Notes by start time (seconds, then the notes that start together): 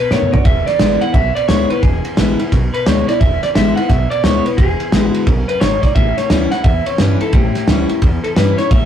Already playing: B2
0.00 B4
0.11 A2 D#3 A3 B3 F#4 C#5, snare
0.22 mid tom
0.32 B3 F#4 D5, muted upright bass stroke, floor tom
0.45 E1 E2 E5, kick, ride
0.66 D5, muted upright bass stroke, snare, ride
0.79 A1 D3 G#3 B3 E4, snare, ride
1.01 B3 E4 F#5, ride
1.14 B1 B2 E5, kick, ride
1.35 D5, ride
1.48 D2 D3 G#3 B3 E4 C#5, snare, ride
1.69 B3 E4 B4, ride
1.82 E1 E2 G#4, kick, ride
2.05 ride
2.17 A1 D3 G#3 B3 E4, snare, ride
2.39 B3 E4, ride
2.52 B1 B2, kick, snare, ride
2.74 B4, ride
2.86 D2 D3 G#3 B3 E4 C#5, snare, ride
3.08 B3 E4 D5, muted upright bass stroke, snare, ride
3.20 E1 E5, kick, ride
3.43 D5, snare, ride
3.55 A1 D3 G#3 B3 E4 E5, snare, ride
3.76 E4 F#5, ride
3.80 B3
3.88 B1 B2 E5, kick, snare, ride
4.10 D5, ride
4.23 D2 D3 G#3 B3 E4 C#5, snare, ride
4.45 B3 E4 B4, muted upright bass stroke, ride
4.57 E1 E2 G#4, kick, ride
4.80 ride
4.92 A1 D3 G#3 B3 E4, snare, ride
5.06 F#4
5.14 ride
5.27 B1 F#2, kick, ride
5.48 B4, ride
5.60 G#1 G#2 C#5, snare, ride
5.82 D5, muted upright bass stroke, kick, snare, ride
5.95 A1 A2 E5, kick, ride
6.17 C#5, snare, ride
6.30 D2 E3 G3 C#4 E4, snare, ride
6.51 C#4 E4 F#5, snare, ride
6.64 E2 E5, kick, ride
6.86 C#5, muted upright bass stroke, ride
6.98 G2 E3 G3 C#4 E4 B4, snare, ride
7.21 C#4 E4 A4, muted upright bass stroke, ride
7.33 A1 A2 G4, kick, ride
7.55 snare, ride
7.68 D2 E3 G3 C#4 E4, snare, ride
7.89 C#4 E4, muted upright bass stroke, ride
8.02 E2, kick, ride
8.24 A4, muted upright bass stroke, ride
8.36 G2 E3 G3 C#4 E4 B4, snare, ride
8.58 C#4 E4 C#5, snare, ride
8.71 A1 A2 E5, kick, ride